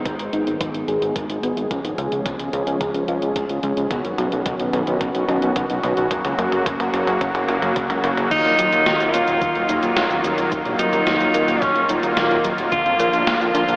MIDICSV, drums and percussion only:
0, 0, Header, 1, 2, 480
1, 0, Start_track
1, 0, Key_signature, -6, "minor"
1, 0, Tempo, 550459
1, 1490, Time_signature, 4, 2, 24, 8
1, 12000, End_track
2, 0, Start_track
2, 0, Title_t, "Drums"
2, 48, Note_on_c, 9, 42, 97
2, 48, Note_on_c, 9, 47, 52
2, 50, Note_on_c, 9, 36, 91
2, 135, Note_off_c, 9, 42, 0
2, 135, Note_off_c, 9, 47, 0
2, 137, Note_off_c, 9, 36, 0
2, 169, Note_on_c, 9, 42, 41
2, 256, Note_off_c, 9, 42, 0
2, 289, Note_on_c, 9, 42, 66
2, 376, Note_off_c, 9, 42, 0
2, 410, Note_on_c, 9, 42, 41
2, 497, Note_off_c, 9, 42, 0
2, 529, Note_on_c, 9, 42, 94
2, 529, Note_on_c, 9, 47, 53
2, 530, Note_on_c, 9, 36, 94
2, 616, Note_off_c, 9, 42, 0
2, 616, Note_off_c, 9, 47, 0
2, 617, Note_off_c, 9, 36, 0
2, 649, Note_on_c, 9, 42, 41
2, 736, Note_off_c, 9, 42, 0
2, 769, Note_on_c, 9, 42, 36
2, 856, Note_off_c, 9, 42, 0
2, 890, Note_on_c, 9, 42, 40
2, 977, Note_off_c, 9, 42, 0
2, 1010, Note_on_c, 9, 36, 98
2, 1010, Note_on_c, 9, 42, 96
2, 1010, Note_on_c, 9, 47, 54
2, 1097, Note_off_c, 9, 36, 0
2, 1097, Note_off_c, 9, 42, 0
2, 1097, Note_off_c, 9, 47, 0
2, 1130, Note_on_c, 9, 42, 40
2, 1217, Note_off_c, 9, 42, 0
2, 1251, Note_on_c, 9, 42, 67
2, 1338, Note_off_c, 9, 42, 0
2, 1370, Note_on_c, 9, 42, 41
2, 1457, Note_off_c, 9, 42, 0
2, 1490, Note_on_c, 9, 36, 91
2, 1490, Note_on_c, 9, 42, 98
2, 1490, Note_on_c, 9, 47, 60
2, 1577, Note_off_c, 9, 36, 0
2, 1577, Note_off_c, 9, 42, 0
2, 1577, Note_off_c, 9, 47, 0
2, 1610, Note_on_c, 9, 42, 42
2, 1697, Note_off_c, 9, 42, 0
2, 1729, Note_on_c, 9, 42, 70
2, 1816, Note_off_c, 9, 42, 0
2, 1848, Note_on_c, 9, 42, 41
2, 1936, Note_off_c, 9, 42, 0
2, 1968, Note_on_c, 9, 42, 98
2, 1968, Note_on_c, 9, 47, 64
2, 1969, Note_on_c, 9, 36, 97
2, 2055, Note_off_c, 9, 42, 0
2, 2055, Note_off_c, 9, 47, 0
2, 2056, Note_off_c, 9, 36, 0
2, 2088, Note_on_c, 9, 42, 42
2, 2175, Note_off_c, 9, 42, 0
2, 2208, Note_on_c, 9, 42, 68
2, 2295, Note_off_c, 9, 42, 0
2, 2328, Note_on_c, 9, 42, 41
2, 2415, Note_off_c, 9, 42, 0
2, 2448, Note_on_c, 9, 42, 93
2, 2448, Note_on_c, 9, 47, 66
2, 2449, Note_on_c, 9, 36, 97
2, 2535, Note_off_c, 9, 42, 0
2, 2535, Note_off_c, 9, 47, 0
2, 2536, Note_off_c, 9, 36, 0
2, 2568, Note_on_c, 9, 42, 40
2, 2655, Note_off_c, 9, 42, 0
2, 2687, Note_on_c, 9, 42, 38
2, 2774, Note_off_c, 9, 42, 0
2, 2809, Note_on_c, 9, 42, 40
2, 2896, Note_off_c, 9, 42, 0
2, 2928, Note_on_c, 9, 42, 94
2, 2928, Note_on_c, 9, 47, 70
2, 2929, Note_on_c, 9, 36, 102
2, 3015, Note_off_c, 9, 42, 0
2, 3015, Note_off_c, 9, 47, 0
2, 3016, Note_off_c, 9, 36, 0
2, 3047, Note_on_c, 9, 42, 42
2, 3134, Note_off_c, 9, 42, 0
2, 3166, Note_on_c, 9, 42, 68
2, 3254, Note_off_c, 9, 42, 0
2, 3288, Note_on_c, 9, 42, 41
2, 3375, Note_off_c, 9, 42, 0
2, 3407, Note_on_c, 9, 42, 96
2, 3407, Note_on_c, 9, 47, 76
2, 3409, Note_on_c, 9, 36, 96
2, 3494, Note_off_c, 9, 42, 0
2, 3494, Note_off_c, 9, 47, 0
2, 3496, Note_off_c, 9, 36, 0
2, 3528, Note_on_c, 9, 42, 42
2, 3616, Note_off_c, 9, 42, 0
2, 3648, Note_on_c, 9, 42, 68
2, 3648, Note_on_c, 9, 47, 77
2, 3735, Note_off_c, 9, 42, 0
2, 3735, Note_off_c, 9, 47, 0
2, 3768, Note_on_c, 9, 42, 39
2, 3855, Note_off_c, 9, 42, 0
2, 3887, Note_on_c, 9, 42, 99
2, 3887, Note_on_c, 9, 47, 80
2, 3889, Note_on_c, 9, 36, 97
2, 3974, Note_off_c, 9, 42, 0
2, 3974, Note_off_c, 9, 47, 0
2, 3976, Note_off_c, 9, 36, 0
2, 4008, Note_on_c, 9, 42, 41
2, 4095, Note_off_c, 9, 42, 0
2, 4128, Note_on_c, 9, 42, 66
2, 4128, Note_on_c, 9, 47, 77
2, 4215, Note_off_c, 9, 42, 0
2, 4215, Note_off_c, 9, 47, 0
2, 4248, Note_on_c, 9, 42, 41
2, 4335, Note_off_c, 9, 42, 0
2, 4367, Note_on_c, 9, 42, 96
2, 4367, Note_on_c, 9, 47, 80
2, 4369, Note_on_c, 9, 36, 99
2, 4454, Note_off_c, 9, 42, 0
2, 4454, Note_off_c, 9, 47, 0
2, 4456, Note_off_c, 9, 36, 0
2, 4488, Note_on_c, 9, 42, 40
2, 4575, Note_off_c, 9, 42, 0
2, 4609, Note_on_c, 9, 42, 36
2, 4609, Note_on_c, 9, 47, 85
2, 4696, Note_off_c, 9, 42, 0
2, 4696, Note_off_c, 9, 47, 0
2, 4728, Note_on_c, 9, 42, 41
2, 4815, Note_off_c, 9, 42, 0
2, 4848, Note_on_c, 9, 42, 94
2, 4848, Note_on_c, 9, 47, 86
2, 4850, Note_on_c, 9, 36, 101
2, 4935, Note_off_c, 9, 42, 0
2, 4935, Note_off_c, 9, 47, 0
2, 4937, Note_off_c, 9, 36, 0
2, 4968, Note_on_c, 9, 42, 41
2, 5055, Note_off_c, 9, 42, 0
2, 5088, Note_on_c, 9, 42, 65
2, 5088, Note_on_c, 9, 47, 84
2, 5175, Note_off_c, 9, 42, 0
2, 5175, Note_off_c, 9, 47, 0
2, 5206, Note_on_c, 9, 42, 39
2, 5293, Note_off_c, 9, 42, 0
2, 5326, Note_on_c, 9, 42, 93
2, 5326, Note_on_c, 9, 47, 94
2, 5330, Note_on_c, 9, 36, 93
2, 5414, Note_off_c, 9, 42, 0
2, 5414, Note_off_c, 9, 47, 0
2, 5418, Note_off_c, 9, 36, 0
2, 5447, Note_on_c, 9, 42, 41
2, 5447, Note_on_c, 9, 47, 85
2, 5535, Note_off_c, 9, 42, 0
2, 5535, Note_off_c, 9, 47, 0
2, 5569, Note_on_c, 9, 42, 66
2, 5569, Note_on_c, 9, 47, 97
2, 5656, Note_off_c, 9, 42, 0
2, 5656, Note_off_c, 9, 47, 0
2, 5688, Note_on_c, 9, 42, 39
2, 5688, Note_on_c, 9, 47, 83
2, 5775, Note_off_c, 9, 42, 0
2, 5775, Note_off_c, 9, 47, 0
2, 5809, Note_on_c, 9, 42, 93
2, 5809, Note_on_c, 9, 47, 99
2, 5810, Note_on_c, 9, 36, 98
2, 5896, Note_off_c, 9, 42, 0
2, 5896, Note_off_c, 9, 47, 0
2, 5898, Note_off_c, 9, 36, 0
2, 5929, Note_on_c, 9, 42, 39
2, 5929, Note_on_c, 9, 47, 87
2, 6017, Note_off_c, 9, 42, 0
2, 6017, Note_off_c, 9, 47, 0
2, 6049, Note_on_c, 9, 42, 64
2, 6049, Note_on_c, 9, 47, 99
2, 6136, Note_off_c, 9, 42, 0
2, 6136, Note_off_c, 9, 47, 0
2, 6168, Note_on_c, 9, 42, 40
2, 6168, Note_on_c, 9, 47, 91
2, 6256, Note_off_c, 9, 42, 0
2, 6256, Note_off_c, 9, 47, 0
2, 6288, Note_on_c, 9, 42, 91
2, 6288, Note_on_c, 9, 47, 102
2, 6290, Note_on_c, 9, 36, 97
2, 6375, Note_off_c, 9, 42, 0
2, 6375, Note_off_c, 9, 47, 0
2, 6378, Note_off_c, 9, 36, 0
2, 6408, Note_on_c, 9, 42, 39
2, 6408, Note_on_c, 9, 47, 92
2, 6495, Note_off_c, 9, 42, 0
2, 6495, Note_off_c, 9, 47, 0
2, 6527, Note_on_c, 9, 42, 36
2, 6527, Note_on_c, 9, 47, 103
2, 6614, Note_off_c, 9, 42, 0
2, 6614, Note_off_c, 9, 47, 0
2, 6647, Note_on_c, 9, 42, 39
2, 6647, Note_on_c, 9, 47, 92
2, 6735, Note_off_c, 9, 42, 0
2, 6735, Note_off_c, 9, 47, 0
2, 6767, Note_on_c, 9, 42, 90
2, 6767, Note_on_c, 9, 47, 108
2, 6771, Note_on_c, 9, 36, 101
2, 6854, Note_off_c, 9, 42, 0
2, 6854, Note_off_c, 9, 47, 0
2, 6858, Note_off_c, 9, 36, 0
2, 6888, Note_on_c, 9, 42, 39
2, 6888, Note_on_c, 9, 47, 93
2, 6975, Note_off_c, 9, 42, 0
2, 6975, Note_off_c, 9, 47, 0
2, 7009, Note_on_c, 9, 42, 64
2, 7009, Note_on_c, 9, 47, 110
2, 7096, Note_off_c, 9, 42, 0
2, 7096, Note_off_c, 9, 47, 0
2, 7128, Note_on_c, 9, 42, 39
2, 7128, Note_on_c, 9, 47, 95
2, 7215, Note_off_c, 9, 42, 0
2, 7215, Note_off_c, 9, 47, 0
2, 7249, Note_on_c, 9, 42, 57
2, 7249, Note_on_c, 9, 49, 105
2, 7249, Note_on_c, 9, 82, 43
2, 7251, Note_on_c, 9, 36, 116
2, 7336, Note_off_c, 9, 42, 0
2, 7336, Note_off_c, 9, 49, 0
2, 7336, Note_off_c, 9, 82, 0
2, 7338, Note_off_c, 9, 36, 0
2, 7368, Note_on_c, 9, 42, 29
2, 7455, Note_off_c, 9, 42, 0
2, 7488, Note_on_c, 9, 42, 99
2, 7488, Note_on_c, 9, 82, 72
2, 7575, Note_off_c, 9, 42, 0
2, 7575, Note_off_c, 9, 82, 0
2, 7608, Note_on_c, 9, 42, 55
2, 7608, Note_on_c, 9, 82, 31
2, 7695, Note_off_c, 9, 42, 0
2, 7695, Note_off_c, 9, 82, 0
2, 7729, Note_on_c, 9, 38, 124
2, 7729, Note_on_c, 9, 42, 58
2, 7729, Note_on_c, 9, 82, 42
2, 7816, Note_off_c, 9, 38, 0
2, 7816, Note_off_c, 9, 42, 0
2, 7816, Note_off_c, 9, 82, 0
2, 7850, Note_on_c, 9, 42, 28
2, 7850, Note_on_c, 9, 82, 30
2, 7937, Note_off_c, 9, 42, 0
2, 7937, Note_off_c, 9, 82, 0
2, 7969, Note_on_c, 9, 42, 97
2, 7969, Note_on_c, 9, 82, 73
2, 8056, Note_off_c, 9, 42, 0
2, 8056, Note_off_c, 9, 82, 0
2, 8090, Note_on_c, 9, 42, 56
2, 8090, Note_on_c, 9, 82, 32
2, 8177, Note_off_c, 9, 42, 0
2, 8177, Note_off_c, 9, 82, 0
2, 8211, Note_on_c, 9, 42, 55
2, 8211, Note_on_c, 9, 82, 41
2, 8212, Note_on_c, 9, 36, 122
2, 8298, Note_off_c, 9, 42, 0
2, 8298, Note_off_c, 9, 82, 0
2, 8299, Note_off_c, 9, 36, 0
2, 8331, Note_on_c, 9, 42, 28
2, 8418, Note_off_c, 9, 42, 0
2, 8450, Note_on_c, 9, 42, 96
2, 8450, Note_on_c, 9, 82, 72
2, 8537, Note_off_c, 9, 42, 0
2, 8537, Note_off_c, 9, 82, 0
2, 8570, Note_on_c, 9, 42, 56
2, 8570, Note_on_c, 9, 82, 31
2, 8657, Note_off_c, 9, 42, 0
2, 8657, Note_off_c, 9, 82, 0
2, 8690, Note_on_c, 9, 38, 117
2, 8690, Note_on_c, 9, 42, 57
2, 8690, Note_on_c, 9, 82, 41
2, 8777, Note_off_c, 9, 38, 0
2, 8777, Note_off_c, 9, 42, 0
2, 8777, Note_off_c, 9, 82, 0
2, 8811, Note_on_c, 9, 42, 29
2, 8811, Note_on_c, 9, 82, 29
2, 8898, Note_off_c, 9, 42, 0
2, 8898, Note_off_c, 9, 82, 0
2, 8932, Note_on_c, 9, 42, 93
2, 8932, Note_on_c, 9, 82, 71
2, 9019, Note_off_c, 9, 42, 0
2, 9019, Note_off_c, 9, 82, 0
2, 9051, Note_on_c, 9, 42, 55
2, 9051, Note_on_c, 9, 82, 30
2, 9139, Note_off_c, 9, 42, 0
2, 9139, Note_off_c, 9, 82, 0
2, 9172, Note_on_c, 9, 36, 121
2, 9172, Note_on_c, 9, 42, 57
2, 9172, Note_on_c, 9, 82, 41
2, 9259, Note_off_c, 9, 36, 0
2, 9259, Note_off_c, 9, 42, 0
2, 9259, Note_off_c, 9, 82, 0
2, 9291, Note_on_c, 9, 42, 29
2, 9378, Note_off_c, 9, 42, 0
2, 9411, Note_on_c, 9, 42, 99
2, 9411, Note_on_c, 9, 82, 69
2, 9498, Note_off_c, 9, 42, 0
2, 9498, Note_off_c, 9, 82, 0
2, 9531, Note_on_c, 9, 42, 56
2, 9531, Note_on_c, 9, 82, 31
2, 9618, Note_off_c, 9, 42, 0
2, 9618, Note_off_c, 9, 82, 0
2, 9651, Note_on_c, 9, 38, 127
2, 9651, Note_on_c, 9, 42, 56
2, 9651, Note_on_c, 9, 82, 41
2, 9738, Note_off_c, 9, 38, 0
2, 9738, Note_off_c, 9, 42, 0
2, 9738, Note_off_c, 9, 82, 0
2, 9770, Note_on_c, 9, 42, 28
2, 9770, Note_on_c, 9, 82, 30
2, 9857, Note_off_c, 9, 42, 0
2, 9857, Note_off_c, 9, 82, 0
2, 9891, Note_on_c, 9, 42, 98
2, 9891, Note_on_c, 9, 82, 72
2, 9978, Note_off_c, 9, 42, 0
2, 9978, Note_off_c, 9, 82, 0
2, 10012, Note_on_c, 9, 42, 58
2, 10012, Note_on_c, 9, 82, 31
2, 10099, Note_off_c, 9, 42, 0
2, 10099, Note_off_c, 9, 82, 0
2, 10132, Note_on_c, 9, 36, 124
2, 10132, Note_on_c, 9, 38, 39
2, 10132, Note_on_c, 9, 42, 54
2, 10132, Note_on_c, 9, 82, 40
2, 10219, Note_off_c, 9, 36, 0
2, 10219, Note_off_c, 9, 38, 0
2, 10219, Note_off_c, 9, 42, 0
2, 10219, Note_off_c, 9, 82, 0
2, 10250, Note_on_c, 9, 42, 29
2, 10337, Note_off_c, 9, 42, 0
2, 10370, Note_on_c, 9, 42, 96
2, 10370, Note_on_c, 9, 82, 69
2, 10458, Note_off_c, 9, 42, 0
2, 10458, Note_off_c, 9, 82, 0
2, 10492, Note_on_c, 9, 42, 55
2, 10492, Note_on_c, 9, 82, 31
2, 10579, Note_off_c, 9, 42, 0
2, 10579, Note_off_c, 9, 82, 0
2, 10612, Note_on_c, 9, 38, 127
2, 10612, Note_on_c, 9, 42, 56
2, 10612, Note_on_c, 9, 82, 41
2, 10699, Note_off_c, 9, 38, 0
2, 10699, Note_off_c, 9, 42, 0
2, 10699, Note_off_c, 9, 82, 0
2, 10732, Note_on_c, 9, 42, 28
2, 10732, Note_on_c, 9, 82, 28
2, 10819, Note_off_c, 9, 42, 0
2, 10819, Note_off_c, 9, 82, 0
2, 10852, Note_on_c, 9, 42, 100
2, 10852, Note_on_c, 9, 82, 70
2, 10939, Note_off_c, 9, 42, 0
2, 10939, Note_off_c, 9, 82, 0
2, 10972, Note_on_c, 9, 42, 56
2, 10972, Note_on_c, 9, 82, 30
2, 11059, Note_off_c, 9, 42, 0
2, 11059, Note_off_c, 9, 82, 0
2, 11092, Note_on_c, 9, 36, 124
2, 11092, Note_on_c, 9, 42, 57
2, 11092, Note_on_c, 9, 82, 41
2, 11179, Note_off_c, 9, 36, 0
2, 11179, Note_off_c, 9, 42, 0
2, 11179, Note_off_c, 9, 82, 0
2, 11212, Note_on_c, 9, 42, 29
2, 11299, Note_off_c, 9, 42, 0
2, 11333, Note_on_c, 9, 42, 96
2, 11333, Note_on_c, 9, 82, 71
2, 11420, Note_off_c, 9, 42, 0
2, 11420, Note_off_c, 9, 82, 0
2, 11453, Note_on_c, 9, 42, 55
2, 11453, Note_on_c, 9, 82, 29
2, 11541, Note_off_c, 9, 42, 0
2, 11541, Note_off_c, 9, 82, 0
2, 11573, Note_on_c, 9, 38, 127
2, 11573, Note_on_c, 9, 42, 55
2, 11573, Note_on_c, 9, 82, 39
2, 11661, Note_off_c, 9, 38, 0
2, 11661, Note_off_c, 9, 42, 0
2, 11661, Note_off_c, 9, 82, 0
2, 11694, Note_on_c, 9, 42, 28
2, 11694, Note_on_c, 9, 82, 29
2, 11781, Note_off_c, 9, 42, 0
2, 11781, Note_off_c, 9, 82, 0
2, 11814, Note_on_c, 9, 42, 94
2, 11814, Note_on_c, 9, 82, 68
2, 11901, Note_off_c, 9, 42, 0
2, 11901, Note_off_c, 9, 82, 0
2, 11934, Note_on_c, 9, 42, 56
2, 11934, Note_on_c, 9, 82, 31
2, 12000, Note_off_c, 9, 42, 0
2, 12000, Note_off_c, 9, 82, 0
2, 12000, End_track
0, 0, End_of_file